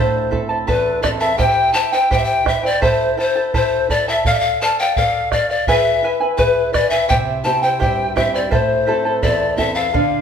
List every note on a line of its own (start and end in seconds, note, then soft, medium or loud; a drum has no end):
0.00 0.66 A2 medium
0.00 0.30 E4 medium
0.00 0.31 A4 medium
0.00 0.32 C5 medium
0.00 0.37 C5 medium
0.00 0.30 E5 medium
0.00 0.31 A5 medium
0.31 0.89 C4 soft
0.31 0.49 E4 medium
0.31 0.89 E4 soft
0.31 0.49 A4 medium
0.31 0.90 A4 medium
0.31 0.50 E5 medium
0.31 0.48 A5 medium
0.31 bombo low medium
0.49 0.66 E4 soft
0.49 0.67 A4 soft
0.49 0.67 A5 medium
0.67 1.37 E2 medium
0.67 1.01 E4 medium
0.67 1.02 A4 medium
0.67 1.01 B4 medium
0.67 1.01 E5 medium
0.67 1.03 A5 medium
0.67 bombo low medium
1.02 1.32 C4 soft
1.02 1.21 E4 medium
1.02 1.32 E4 soft
1.02 1.21 A4 medium
1.02 1.33 A4 medium
1.02 1.08 D5 medium
1.02 1.21 E5 medium
1.02 1.20 A5 medium
1.02 bombo rim medium
1.02 bombo low medium
1.21 1.38 E4 soft
1.21 1.39 A4 soft
1.21 1.39 E5 medium
1.21 1.39 A5 medium
1.38 1.73 E4 medium
1.38 1.75 G4 medium
1.38 1.74 C5 medium
1.38 1.73 E5 medium
1.38 1.75 G5 loud
1.38 1.74 G5 medium
1.38 bombo low medium
1.74 1.93 E4 medium
1.74 1.93 C5 medium
1.74 1.93 E5 medium
1.74 1.91 G5 medium
1.74 1.94 A5 medium
1.92 2.10 E4 soft
1.92 2.10 C5 medium
1.92 2.10 G5 soft
1.92 2.11 G5 medium
2.11 2.44 E4 medium
2.11 2.47 G4 medium
2.11 2.45 C5 medium
2.11 2.44 E5 medium
2.11 2.45 G5 medium
2.11 2.19 G5 medium
2.11 bombo low medium
2.18 2.26 E5 medium
2.24 2.49 G5 medium
2.45 2.64 E4 medium
2.45 2.63 C5 medium
2.45 2.64 E5 soft
2.45 2.67 E5 medium
2.45 2.62 G5 medium
2.45 bombo rim medium
2.45 bombo low medium
2.63 2.80 E4 soft
2.63 2.80 C5 soft
2.63 2.82 D5 medium
2.63 2.82 G5 soft
2.82 3.17 E4 medium
2.82 3.17 A4 medium
2.82 3.18 C5 medium
2.82 3.16 C5 medium
2.82 3.16 E5 medium
2.82 3.17 A5 medium
2.82 bombo low medium
3.17 3.36 E4 medium
3.17 3.35 A4 medium
3.17 3.52 C5 medium
3.17 3.35 E5 medium
3.17 3.34 A5 medium
3.36 3.53 E4 soft
3.36 3.53 A4 soft
3.36 3.54 A5 soft
3.54 3.89 E4 medium
3.54 3.89 A4 medium
3.54 3.89 C5 medium
3.54 3.92 C5 medium
3.54 3.88 E5 medium
3.54 3.89 A5 medium
3.54 bombo low medium
3.90 4.07 E4 medium
3.90 4.08 A4 medium
3.90 4.10 D5 medium
3.90 4.07 E5 soft
3.90 4.07 A5 medium
3.90 bombo low medium
4.08 4.25 E4 soft
4.08 4.25 A4 soft
4.08 4.27 E5 medium
4.08 4.25 A5 medium
4.25 4.61 A4 medium
4.25 4.61 D5 medium
4.25 4.36 F5 medium
4.25 4.61 F5 medium
4.25 bombo low medium
4.34 4.41 E5 medium
4.40 4.61 F5 loud
4.61 4.79 A4 medium
4.61 4.79 D5 medium
4.61 4.79 F5 medium
4.61 4.77 A5 loud
4.79 4.97 D5 soft
4.79 4.97 F5 medium
4.79 4.98 G5 medium
4.96 5.32 A4 medium
4.96 5.33 D5 medium
4.96 5.34 F5 medium
4.96 5.33 F5 medium
4.96 bombo low medium
5.32 5.50 A4 medium
5.32 5.50 D5 medium
5.32 5.48 F5 medium
5.32 bombo rim medium
5.32 bombo low medium
5.49 5.69 D5 medium
5.49 5.68 D5 soft
5.49 5.67 F5 medium
5.67 6.03 E4 medium
5.67 6.03 G#4 medium
5.67 6.03 B4 medium
5.67 6.12 E5 medium
5.67 6.02 E5 medium
5.67 6.04 G#5 medium
5.67 bombo low medium
6.03 6.20 E4 medium
6.03 6.20 B4 medium
6.03 6.21 E5 medium
6.03 6.19 G#5 medium
6.20 6.37 E4 soft
6.20 6.38 B4 soft
6.20 6.38 G#5 medium
6.38 6.72 E4 medium
6.38 6.74 G#4 medium
6.38 6.71 B4 medium
6.38 6.72 B4 medium
6.38 6.72 E5 medium
6.38 6.73 G#5 medium
6.38 bombo low medium
6.73 6.91 E4 medium
6.73 6.91 B4 medium
6.73 6.89 D5 medium
6.73 6.91 E5 soft
6.73 6.90 G#5 medium
6.73 bombo rim medium
6.73 bombo low medium
6.90 7.08 E4 soft
6.90 7.09 B4 soft
6.90 7.07 E5 medium
6.90 7.09 G#5 soft
7.09 7.79 C3 medium
7.09 7.44 E4 medium
7.09 7.45 G4 medium
7.09 7.44 C5 medium
7.09 7.43 E5 medium
7.09 7.17 G5 medium
7.09 7.44 G5 medium
7.09 bombo low medium
7.44 8.03 C4 soft
7.44 7.63 E4 medium
7.44 8.03 E4 soft
7.44 8.03 G4 soft
7.44 7.62 C5 medium
7.44 7.63 E5 medium
7.44 7.61 G5 medium
7.44 7.64 A5 medium
7.62 7.79 E4 soft
7.62 7.79 C5 medium
7.62 7.79 G5 medium
7.62 7.80 G5 medium
7.80 8.50 G2 medium
7.80 8.15 E4 medium
7.80 8.16 G4 medium
7.80 8.15 C5 medium
7.80 8.14 E5 medium
7.80 8.15 G5 medium
7.80 8.14 G5 medium
7.80 bombo low medium
8.15 8.45 C4 medium
8.15 8.34 E4 medium
8.15 8.45 E4 soft
8.15 8.45 G4 soft
8.15 8.34 C5 medium
8.15 8.34 E5 soft
8.15 8.36 E5 medium
8.15 8.33 G5 medium
8.15 bombo rim medium
8.15 bombo low medium
8.34 8.50 E4 soft
8.34 8.50 C5 soft
8.34 8.51 D5 medium
8.34 8.52 G5 soft
8.51 9.21 A2 medium
8.51 8.86 E4 medium
8.51 8.86 A4 medium
8.51 8.87 C5 medium
8.51 9.19 C5 medium
8.51 8.86 E5 medium
8.51 8.87 A5 medium
8.51 bombo low medium
8.87 9.45 C4 soft
8.87 9.05 E4 medium
8.87 9.45 E4 soft
8.87 9.05 A4 medium
8.87 9.45 A4 medium
8.87 9.05 E5 medium
8.87 9.04 A5 medium
9.05 9.22 E4 soft
9.05 9.23 A4 soft
9.05 9.22 A5 soft
9.22 9.92 E2 medium
9.22 9.57 E4 medium
9.22 9.58 A4 medium
9.22 9.58 C5 medium
9.22 9.59 D5 medium
9.22 9.56 E5 medium
9.22 9.58 A5 medium
9.22 bombo low medium
9.57 9.86 C4 soft
9.57 9.86 E4 soft
9.57 9.76 E4 medium
9.57 9.87 A4 medium
9.57 9.75 A4 medium
9.57 9.74 E5 medium
9.57 9.76 E5 medium
9.57 9.75 A5 medium
9.57 bombo low soft
9.75 9.93 E4 soft
9.75 9.92 A4 soft
9.75 10.21 F5 medium
9.75 9.94 A5 medium
9.93 10.21 D3 medium
9.93 10.21 A4 medium
9.93 10.21 D5 medium
9.93 10.21 F5 medium
9.93 bombo low medium